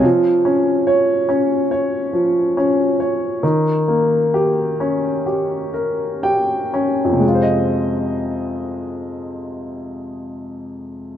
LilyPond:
\new Staff \with { instrumentName = "Upright piano" } { \time 4/4 \key f \minor \tempo 4 = 64 << { r1 | r2. g''4 | r1 | } \\ { f8 des'8 des''8 des'8 des''8 f8 des'8 des''8 | ees8 bes8 g'8 des'8 g'8 bes'8 g'8 des'8 | <f, c aes f' c'' ees''>1 | } >> }